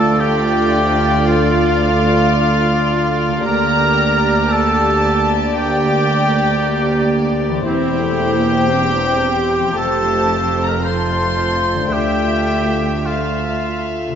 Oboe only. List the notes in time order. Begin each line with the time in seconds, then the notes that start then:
Already playing: A4
0.19 G4
1.27 F4
3.46 A#4
4.52 A4
5.58 G4
7.67 G4
9.78 A4
10.68 A#4
10.85 C5
11.93 G4
13.06 F4